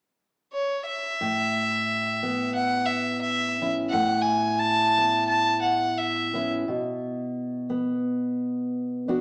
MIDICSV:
0, 0, Header, 1, 3, 480
1, 0, Start_track
1, 0, Key_signature, 3, "major"
1, 0, Tempo, 683371
1, 849, Time_signature, 4, 2, 24, 8
1, 6468, End_track
2, 0, Start_track
2, 0, Title_t, "Fiddle"
2, 0, Program_c, 0, 110
2, 371, Note_on_c, 0, 73, 64
2, 593, Note_off_c, 0, 73, 0
2, 600, Note_on_c, 0, 76, 77
2, 1777, Note_off_c, 0, 76, 0
2, 1790, Note_on_c, 0, 78, 73
2, 2007, Note_on_c, 0, 76, 68
2, 2018, Note_off_c, 0, 78, 0
2, 2252, Note_off_c, 0, 76, 0
2, 2257, Note_on_c, 0, 76, 76
2, 2607, Note_off_c, 0, 76, 0
2, 2736, Note_on_c, 0, 78, 87
2, 2962, Note_on_c, 0, 80, 79
2, 2973, Note_off_c, 0, 78, 0
2, 3225, Note_on_c, 0, 81, 92
2, 3235, Note_off_c, 0, 80, 0
2, 3702, Note_off_c, 0, 81, 0
2, 3706, Note_on_c, 0, 81, 83
2, 3938, Note_off_c, 0, 81, 0
2, 3942, Note_on_c, 0, 78, 70
2, 4199, Note_on_c, 0, 76, 68
2, 4210, Note_off_c, 0, 78, 0
2, 4565, Note_off_c, 0, 76, 0
2, 6468, End_track
3, 0, Start_track
3, 0, Title_t, "Steel-string acoustic guitar"
3, 0, Program_c, 1, 25
3, 848, Note_on_c, 1, 45, 60
3, 1565, Note_on_c, 1, 59, 45
3, 2536, Note_off_c, 1, 59, 0
3, 2539, Note_on_c, 1, 59, 44
3, 2540, Note_on_c, 1, 61, 48
3, 2544, Note_on_c, 1, 64, 56
3, 2744, Note_off_c, 1, 61, 0
3, 2755, Note_off_c, 1, 45, 0
3, 2763, Note_on_c, 1, 45, 65
3, 2784, Note_off_c, 1, 59, 0
3, 3496, Note_on_c, 1, 59, 47
3, 4443, Note_off_c, 1, 59, 0
3, 4450, Note_on_c, 1, 59, 48
3, 4451, Note_off_c, 1, 64, 0
3, 4456, Note_on_c, 1, 61, 49
3, 4460, Note_on_c, 1, 64, 54
3, 4662, Note_off_c, 1, 59, 0
3, 4663, Note_off_c, 1, 61, 0
3, 4687, Note_off_c, 1, 45, 0
3, 4693, Note_on_c, 1, 47, 64
3, 4695, Note_off_c, 1, 64, 0
3, 5407, Note_on_c, 1, 59, 48
3, 6368, Note_off_c, 1, 59, 0
3, 6378, Note_on_c, 1, 62, 46
3, 6382, Note_on_c, 1, 59, 47
3, 6386, Note_on_c, 1, 66, 51
3, 6468, Note_off_c, 1, 47, 0
3, 6468, Note_off_c, 1, 59, 0
3, 6468, Note_off_c, 1, 62, 0
3, 6468, Note_off_c, 1, 66, 0
3, 6468, End_track
0, 0, End_of_file